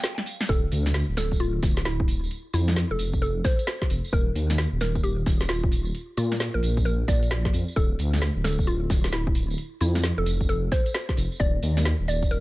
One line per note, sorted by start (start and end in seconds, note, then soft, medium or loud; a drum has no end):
0.04 snare loud
0.04 closed hi-hat medium
0.04 tambourine soft
0.18 snare medium
0.26 open hi-hat loud
0.26 tambourine loud
0.41 snare medium
0.41 tambourine soft
0.49 0.67 D1 loud
0.49 0.62 A4 loud
0.49 kick loud
0.49 closed hi-hat medium
0.49 tambourine soft
0.72 1.03 D2 loud
0.72 open hi-hat loud
0.72 tambourine medium
0.86 snare medium
0.86 tambourine soft
0.94 snare loud
0.94 closed hi-hat medium
0.94 tambourine soft
1.09 1.15 D1 medium
1.17 1.59 D1 medium
1.17 1.30 A4 medium
1.17 snare medium
1.17 open hi-hat loud
1.17 tambourine medium
1.31 kick medium
1.31 closed hi-hat soft
1.31 tambourine medium
1.40 1.53 F4 medium
1.40 closed hi-hat medium
1.40 tambourine soft
1.63 2.27 D1 medium
1.63 kick loud
1.63 snare soft
1.63 open hi-hat loud
1.63 tambourine medium
1.76 snare medium
1.76 closed hi-hat medium
1.76 tambourine medium
1.85 2.03 E4 medium
1.85 snare loud
1.85 closed hi-hat medium
1.85 tambourine soft
2.00 kick loud
2.08 open hi-hat loud
2.08 tambourine medium
2.24 tambourine medium
2.30 closed hi-hat medium
2.30 tambourine soft
2.53 2.84 F2 loud
2.53 2.71 E4 loud
2.53 open hi-hat loud
2.53 tambourine loud
2.68 snare medium
2.68 tambourine medium
2.76 snare loud
2.76 closed hi-hat medium
2.76 tambourine soft
2.91 2.97 F1 medium
2.91 3.04 A4 medium
2.99 3.41 F1 medium
2.99 open hi-hat loud
2.99 tambourine loud
3.13 kick medium
3.13 closed hi-hat soft
3.13 tambourine medium
3.22 3.35 A4 medium
3.22 closed hi-hat medium
3.22 tambourine soft
3.44 3.62 C5 medium
3.44 kick loud
3.44 snare soft
3.44 open hi-hat loud
3.44 tambourine medium
3.59 closed hi-hat medium
3.59 tambourine medium
3.67 snare loud
3.67 closed hi-hat medium
3.67 tambourine soft
3.82 kick medium
3.82 snare medium
3.90 4.00 F1 medium
3.90 open hi-hat loud
3.90 tambourine medium
4.04 tambourine soft
4.12 4.31 D#1 loud
4.12 4.26 A#4 loud
4.12 kick loud
4.12 closed hi-hat medium
4.12 tambourine soft
4.35 4.66 D#2 loud
4.35 open hi-hat loud
4.35 tambourine loud
4.50 snare medium
4.50 tambourine medium
4.58 snare loud
4.58 closed hi-hat medium
4.58 tambourine soft
4.73 4.79 D#1 medium
4.81 5.23 D#1 medium
4.81 4.94 A#4 medium
4.81 snare medium
4.81 open hi-hat loud
4.81 tambourine medium
4.95 kick medium
4.95 closed hi-hat soft
4.95 tambourine medium
5.03 5.17 G4 medium
5.03 closed hi-hat medium
5.03 tambourine soft
5.26 5.91 D#1 medium
5.26 kick loud
5.26 snare soft
5.26 open hi-hat loud
5.26 tambourine medium
5.40 snare medium
5.40 closed hi-hat medium
5.40 tambourine medium
5.49 5.66 F4 medium
5.49 snare loud
5.49 closed hi-hat medium
5.49 tambourine soft
5.63 kick loud
5.72 open hi-hat loud
5.72 tambourine medium
5.85 tambourine medium
5.95 closed hi-hat medium
5.95 tambourine soft
6.17 6.48 A#2 loud
6.17 6.35 F4 loud
6.17 open hi-hat loud
6.17 tambourine medium
6.32 snare medium
6.32 tambourine medium
6.40 snare loud
6.40 closed hi-hat medium
6.40 tambourine soft
6.54 6.61 A#1 medium
6.54 6.68 A#4 medium
6.63 6.85 A#1 medium
6.63 open hi-hat medium
6.63 tambourine medium
6.77 kick medium
6.77 closed hi-hat soft
6.77 tambourine soft
6.85 7.04 A#1 medium
6.85 6.98 A#4 medium
6.85 closed hi-hat medium
6.85 tambourine soft
7.08 7.50 A#1 medium
7.08 7.25 D5 medium
7.08 kick loud
7.08 snare soft
7.08 open hi-hat loud
7.08 tambourine loud
7.23 closed hi-hat medium
7.23 tambourine medium
7.31 snare loud
7.31 closed hi-hat medium
7.45 kick medium
7.45 snare medium
7.54 7.64 F2 medium
7.54 open hi-hat loud
7.54 tambourine medium
7.68 tambourine medium
7.76 7.95 D1 loud
7.76 7.89 A4 loud
7.76 kick loud
7.76 closed hi-hat medium
7.76 tambourine soft
7.99 8.30 D2 loud
7.99 open hi-hat loud
7.99 tambourine loud
8.13 snare medium
8.13 tambourine medium
8.22 snare loud
8.22 closed hi-hat medium
8.36 8.42 D1 medium
8.44 8.86 D1 medium
8.44 8.57 A4 medium
8.44 snare medium
8.44 open hi-hat loud
8.44 tambourine loud
8.59 kick medium
8.59 closed hi-hat soft
8.59 tambourine medium
8.67 8.80 F4 medium
8.67 closed hi-hat medium
8.67 tambourine soft
8.90 9.55 D1 loud
8.90 kick loud
8.90 snare soft
8.90 open hi-hat loud
8.90 tambourine medium
9.04 snare medium
9.04 closed hi-hat medium
9.04 tambourine medium
9.13 9.30 E4 medium
9.13 snare loud
9.13 closed hi-hat medium
9.27 kick loud
9.35 open hi-hat loud
9.35 tambourine medium
9.50 tambourine medium
9.58 closed hi-hat medium
9.58 tambourine soft
9.81 10.12 F2 loud
9.81 9.98 E4 medium
9.81 open hi-hat loud
9.81 tambourine medium
9.95 snare medium
9.95 tambourine medium
10.04 snare loud
10.04 closed hi-hat medium
10.04 tambourine soft
10.18 10.24 F1 medium
10.18 10.32 A4 medium
10.26 10.68 F1 medium
10.26 open hi-hat loud
10.26 tambourine medium
10.41 kick medium
10.41 closed hi-hat soft
10.41 tambourine soft
10.49 10.62 A4 medium
10.49 closed hi-hat medium
10.49 tambourine soft
10.72 10.89 C5 loud
10.72 kick loud
10.72 snare soft
10.72 open hi-hat loud
10.72 tambourine medium
10.86 closed hi-hat medium
10.86 tambourine medium
10.95 snare loud
10.95 closed hi-hat medium
11.09 kick medium
11.09 snare medium
11.17 11.28 F1 medium
11.17 open hi-hat loud
11.17 tambourine medium
11.32 tambourine medium
11.40 11.58 D#1 loud
11.40 11.53 D5 loud
11.40 kick loud
11.40 closed hi-hat medium
11.40 tambourine soft
11.63 11.94 D#2 loud
11.63 open hi-hat loud
11.63 tambourine medium
11.77 snare medium
11.77 tambourine medium
11.85 snare loud
11.85 closed hi-hat medium
11.85 tambourine soft
12.00 12.06 D#1 medium
12.08 12.40 D#1 medium
12.08 12.21 D5 medium
12.08 open hi-hat loud
12.08 tambourine medium
12.22 kick medium
12.22 closed hi-hat soft
12.22 tambourine medium
12.31 12.40 A#4 medium
12.31 closed hi-hat medium
12.31 tambourine soft